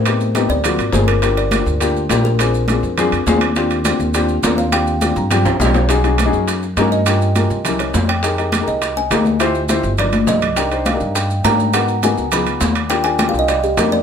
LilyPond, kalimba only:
\new Staff \with { instrumentName = "Kalimba" } { \time 4/4 \key c \minor \tempo 4 = 205 c''4 r8 d''4. c''8 ais'8 | bes'8 d''4. r4. bes'8 | c''4. r2 r8 | r2. r8 f''8 |
g''4. r2 r8 | r2. r8 dis''8 | g''4. r4 des''4 g''8~ | g''4 r8 ees''4 aes''4. |
r2 d''4 ees''4 | g''8 r8 f''4 g''4 bes''8 r8 | ges''4 aes''4 ces'''8 r4. | g''8 aes''8 \tuplet 3/2 { g''8 f''8 ees''8 } d''8 g'8 bes'8 d''8 | }